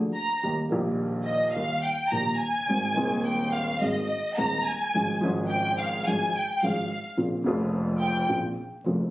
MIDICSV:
0, 0, Header, 1, 4, 480
1, 0, Start_track
1, 0, Key_signature, -4, "major"
1, 0, Tempo, 564440
1, 367, Time_signature, 4, 2, 24, 8
1, 5169, Tempo, 557103
1, 7776, End_track
2, 0, Start_track
2, 0, Title_t, "Violin section"
2, 0, Program_c, 0, 48
2, 131, Note_on_c, 0, 82, 87
2, 352, Note_off_c, 0, 82, 0
2, 1059, Note_on_c, 0, 75, 73
2, 1293, Note_off_c, 0, 75, 0
2, 1303, Note_on_c, 0, 77, 82
2, 1536, Note_off_c, 0, 77, 0
2, 1561, Note_on_c, 0, 79, 75
2, 1789, Note_on_c, 0, 82, 79
2, 1804, Note_off_c, 0, 79, 0
2, 2039, Note_off_c, 0, 82, 0
2, 2041, Note_on_c, 0, 80, 88
2, 2733, Note_off_c, 0, 80, 0
2, 2771, Note_on_c, 0, 79, 82
2, 2995, Note_off_c, 0, 79, 0
2, 3000, Note_on_c, 0, 77, 83
2, 3245, Note_off_c, 0, 77, 0
2, 3253, Note_on_c, 0, 75, 79
2, 3721, Note_on_c, 0, 82, 83
2, 3731, Note_off_c, 0, 75, 0
2, 3966, Note_off_c, 0, 82, 0
2, 3974, Note_on_c, 0, 80, 85
2, 4452, Note_off_c, 0, 80, 0
2, 4663, Note_on_c, 0, 79, 94
2, 4898, Note_off_c, 0, 79, 0
2, 4919, Note_on_c, 0, 77, 82
2, 5148, Note_on_c, 0, 80, 91
2, 5163, Note_off_c, 0, 77, 0
2, 5399, Note_off_c, 0, 80, 0
2, 5416, Note_on_c, 0, 79, 81
2, 5654, Note_off_c, 0, 79, 0
2, 5661, Note_on_c, 0, 77, 71
2, 6017, Note_off_c, 0, 77, 0
2, 6827, Note_on_c, 0, 79, 94
2, 7060, Note_off_c, 0, 79, 0
2, 7776, End_track
3, 0, Start_track
3, 0, Title_t, "Upright piano"
3, 0, Program_c, 1, 0
3, 0, Note_on_c, 1, 38, 52
3, 0, Note_on_c, 1, 50, 49
3, 0, Note_on_c, 1, 53, 43
3, 0, Note_on_c, 1, 58, 39
3, 0, Note_on_c, 1, 62, 39
3, 0, Note_on_c, 1, 68, 49
3, 90, Note_off_c, 1, 38, 0
3, 90, Note_off_c, 1, 50, 0
3, 90, Note_off_c, 1, 53, 0
3, 92, Note_off_c, 1, 58, 0
3, 92, Note_off_c, 1, 62, 0
3, 93, Note_off_c, 1, 68, 0
3, 366, Note_on_c, 1, 51, 51
3, 369, Note_on_c, 1, 67, 55
3, 372, Note_on_c, 1, 55, 41
3, 373, Note_on_c, 1, 39, 53
3, 374, Note_on_c, 1, 58, 37
3, 569, Note_off_c, 1, 67, 0
3, 570, Note_off_c, 1, 51, 0
3, 570, Note_off_c, 1, 55, 0
3, 571, Note_off_c, 1, 39, 0
3, 571, Note_off_c, 1, 58, 0
3, 588, Note_on_c, 1, 51, 65
3, 602, Note_on_c, 1, 55, 60
3, 609, Note_on_c, 1, 46, 78
3, 611, Note_on_c, 1, 34, 79
3, 613, Note_on_c, 1, 58, 61
3, 628, Note_on_c, 1, 67, 71
3, 1277, Note_off_c, 1, 51, 0
3, 1284, Note_off_c, 1, 55, 0
3, 1288, Note_off_c, 1, 46, 0
3, 1289, Note_off_c, 1, 34, 0
3, 1290, Note_off_c, 1, 58, 0
3, 1297, Note_off_c, 1, 67, 0
3, 1324, Note_on_c, 1, 39, 47
3, 1327, Note_on_c, 1, 51, 45
3, 1327, Note_on_c, 1, 58, 37
3, 1327, Note_on_c, 1, 67, 46
3, 1329, Note_on_c, 1, 55, 39
3, 1526, Note_off_c, 1, 39, 0
3, 1527, Note_off_c, 1, 51, 0
3, 1527, Note_off_c, 1, 58, 0
3, 1527, Note_off_c, 1, 67, 0
3, 1528, Note_off_c, 1, 55, 0
3, 1798, Note_on_c, 1, 46, 43
3, 1800, Note_on_c, 1, 51, 37
3, 1800, Note_on_c, 1, 55, 35
3, 1803, Note_on_c, 1, 34, 44
3, 1806, Note_on_c, 1, 58, 36
3, 1807, Note_on_c, 1, 67, 46
3, 2005, Note_off_c, 1, 46, 0
3, 2006, Note_off_c, 1, 51, 0
3, 2006, Note_off_c, 1, 55, 0
3, 2007, Note_off_c, 1, 34, 0
3, 2009, Note_off_c, 1, 58, 0
3, 2009, Note_off_c, 1, 67, 0
3, 2287, Note_on_c, 1, 51, 42
3, 2289, Note_on_c, 1, 44, 50
3, 2290, Note_on_c, 1, 60, 42
3, 2290, Note_on_c, 1, 68, 49
3, 2293, Note_on_c, 1, 32, 55
3, 2295, Note_on_c, 1, 56, 41
3, 2488, Note_off_c, 1, 51, 0
3, 2491, Note_off_c, 1, 44, 0
3, 2491, Note_off_c, 1, 60, 0
3, 2491, Note_off_c, 1, 68, 0
3, 2493, Note_off_c, 1, 32, 0
3, 2494, Note_off_c, 1, 56, 0
3, 2501, Note_on_c, 1, 51, 66
3, 2519, Note_on_c, 1, 56, 58
3, 2521, Note_on_c, 1, 39, 69
3, 2522, Note_on_c, 1, 27, 77
3, 2527, Note_on_c, 1, 60, 62
3, 2534, Note_on_c, 1, 68, 62
3, 3202, Note_off_c, 1, 51, 0
3, 3211, Note_off_c, 1, 39, 0
3, 3211, Note_off_c, 1, 56, 0
3, 3212, Note_off_c, 1, 27, 0
3, 3214, Note_off_c, 1, 60, 0
3, 3218, Note_off_c, 1, 68, 0
3, 3241, Note_on_c, 1, 51, 44
3, 3243, Note_on_c, 1, 32, 52
3, 3244, Note_on_c, 1, 44, 50
3, 3245, Note_on_c, 1, 56, 41
3, 3245, Note_on_c, 1, 60, 41
3, 3251, Note_on_c, 1, 68, 47
3, 3448, Note_off_c, 1, 51, 0
3, 3449, Note_off_c, 1, 32, 0
3, 3449, Note_off_c, 1, 44, 0
3, 3450, Note_off_c, 1, 56, 0
3, 3450, Note_off_c, 1, 60, 0
3, 3453, Note_off_c, 1, 68, 0
3, 3724, Note_on_c, 1, 27, 49
3, 3724, Note_on_c, 1, 56, 43
3, 3725, Note_on_c, 1, 60, 40
3, 3727, Note_on_c, 1, 39, 49
3, 3727, Note_on_c, 1, 51, 43
3, 3727, Note_on_c, 1, 68, 45
3, 3929, Note_off_c, 1, 27, 0
3, 3929, Note_off_c, 1, 56, 0
3, 3929, Note_off_c, 1, 60, 0
3, 3930, Note_off_c, 1, 39, 0
3, 3930, Note_off_c, 1, 51, 0
3, 3930, Note_off_c, 1, 68, 0
3, 4204, Note_on_c, 1, 44, 54
3, 4206, Note_on_c, 1, 53, 41
3, 4211, Note_on_c, 1, 56, 40
3, 4211, Note_on_c, 1, 68, 49
3, 4212, Note_on_c, 1, 61, 43
3, 4213, Note_on_c, 1, 32, 54
3, 4409, Note_off_c, 1, 44, 0
3, 4410, Note_off_c, 1, 53, 0
3, 4412, Note_off_c, 1, 56, 0
3, 4412, Note_off_c, 1, 61, 0
3, 4412, Note_off_c, 1, 68, 0
3, 4413, Note_off_c, 1, 32, 0
3, 4428, Note_on_c, 1, 53, 68
3, 4446, Note_on_c, 1, 56, 65
3, 4450, Note_on_c, 1, 32, 75
3, 4450, Note_on_c, 1, 44, 79
3, 4452, Note_on_c, 1, 61, 64
3, 4467, Note_on_c, 1, 68, 74
3, 5121, Note_off_c, 1, 53, 0
3, 5130, Note_off_c, 1, 56, 0
3, 5132, Note_off_c, 1, 32, 0
3, 5132, Note_off_c, 1, 44, 0
3, 5133, Note_off_c, 1, 61, 0
3, 5141, Note_off_c, 1, 68, 0
3, 5160, Note_on_c, 1, 53, 43
3, 5163, Note_on_c, 1, 32, 48
3, 5164, Note_on_c, 1, 44, 53
3, 5164, Note_on_c, 1, 61, 36
3, 5166, Note_on_c, 1, 56, 38
3, 5166, Note_on_c, 1, 68, 45
3, 5367, Note_off_c, 1, 53, 0
3, 5368, Note_off_c, 1, 32, 0
3, 5369, Note_off_c, 1, 44, 0
3, 5369, Note_off_c, 1, 61, 0
3, 5370, Note_off_c, 1, 56, 0
3, 5370, Note_off_c, 1, 68, 0
3, 5640, Note_on_c, 1, 53, 44
3, 5643, Note_on_c, 1, 44, 50
3, 5644, Note_on_c, 1, 61, 41
3, 5646, Note_on_c, 1, 32, 48
3, 5646, Note_on_c, 1, 56, 40
3, 5651, Note_on_c, 1, 68, 50
3, 5847, Note_off_c, 1, 53, 0
3, 5849, Note_off_c, 1, 44, 0
3, 5849, Note_off_c, 1, 61, 0
3, 5850, Note_off_c, 1, 56, 0
3, 5851, Note_off_c, 1, 32, 0
3, 5853, Note_off_c, 1, 68, 0
3, 6112, Note_on_c, 1, 34, 55
3, 6113, Note_on_c, 1, 46, 59
3, 6115, Note_on_c, 1, 58, 43
3, 6117, Note_on_c, 1, 49, 49
3, 6118, Note_on_c, 1, 60, 40
3, 6121, Note_on_c, 1, 65, 51
3, 6323, Note_off_c, 1, 34, 0
3, 6324, Note_off_c, 1, 46, 0
3, 6324, Note_off_c, 1, 58, 0
3, 6325, Note_off_c, 1, 49, 0
3, 6326, Note_off_c, 1, 60, 0
3, 6328, Note_off_c, 1, 65, 0
3, 6344, Note_on_c, 1, 49, 73
3, 6353, Note_on_c, 1, 58, 65
3, 6360, Note_on_c, 1, 29, 80
3, 6363, Note_on_c, 1, 41, 82
3, 6370, Note_on_c, 1, 60, 60
3, 6378, Note_on_c, 1, 65, 75
3, 7040, Note_off_c, 1, 49, 0
3, 7045, Note_off_c, 1, 58, 0
3, 7048, Note_off_c, 1, 29, 0
3, 7049, Note_off_c, 1, 41, 0
3, 7053, Note_off_c, 1, 60, 0
3, 7057, Note_off_c, 1, 65, 0
3, 7070, Note_on_c, 1, 58, 41
3, 7071, Note_on_c, 1, 46, 59
3, 7071, Note_on_c, 1, 49, 44
3, 7074, Note_on_c, 1, 34, 56
3, 7075, Note_on_c, 1, 60, 43
3, 7075, Note_on_c, 1, 65, 54
3, 7280, Note_off_c, 1, 58, 0
3, 7281, Note_off_c, 1, 46, 0
3, 7281, Note_off_c, 1, 49, 0
3, 7282, Note_off_c, 1, 34, 0
3, 7283, Note_off_c, 1, 60, 0
3, 7283, Note_off_c, 1, 65, 0
3, 7562, Note_on_c, 1, 58, 44
3, 7565, Note_on_c, 1, 29, 56
3, 7565, Note_on_c, 1, 49, 44
3, 7566, Note_on_c, 1, 41, 53
3, 7566, Note_on_c, 1, 65, 49
3, 7567, Note_on_c, 1, 60, 42
3, 7767, Note_off_c, 1, 58, 0
3, 7768, Note_off_c, 1, 29, 0
3, 7769, Note_off_c, 1, 41, 0
3, 7769, Note_off_c, 1, 49, 0
3, 7769, Note_off_c, 1, 60, 0
3, 7769, Note_off_c, 1, 65, 0
3, 7776, End_track
4, 0, Start_track
4, 0, Title_t, "Double bass"
4, 0, Program_c, 2, 43
4, 0, Note_on_c, 2, 38, 65
4, 90, Note_off_c, 2, 38, 0
4, 370, Note_on_c, 2, 39, 55
4, 569, Note_off_c, 2, 39, 0
4, 598, Note_on_c, 2, 34, 82
4, 1282, Note_off_c, 2, 34, 0
4, 1320, Note_on_c, 2, 39, 52
4, 1523, Note_off_c, 2, 39, 0
4, 1793, Note_on_c, 2, 34, 54
4, 2002, Note_off_c, 2, 34, 0
4, 2275, Note_on_c, 2, 32, 52
4, 2484, Note_off_c, 2, 32, 0
4, 2516, Note_on_c, 2, 39, 80
4, 3209, Note_off_c, 2, 39, 0
4, 3245, Note_on_c, 2, 32, 57
4, 3450, Note_off_c, 2, 32, 0
4, 3722, Note_on_c, 2, 39, 65
4, 3927, Note_off_c, 2, 39, 0
4, 4204, Note_on_c, 2, 32, 49
4, 4409, Note_off_c, 2, 32, 0
4, 4439, Note_on_c, 2, 32, 93
4, 5126, Note_off_c, 2, 32, 0
4, 5161, Note_on_c, 2, 32, 60
4, 5368, Note_off_c, 2, 32, 0
4, 5648, Note_on_c, 2, 32, 62
4, 5851, Note_off_c, 2, 32, 0
4, 6128, Note_on_c, 2, 34, 55
4, 6331, Note_off_c, 2, 34, 0
4, 6370, Note_on_c, 2, 29, 91
4, 7053, Note_off_c, 2, 29, 0
4, 7092, Note_on_c, 2, 34, 56
4, 7291, Note_off_c, 2, 34, 0
4, 7559, Note_on_c, 2, 29, 59
4, 7765, Note_off_c, 2, 29, 0
4, 7776, End_track
0, 0, End_of_file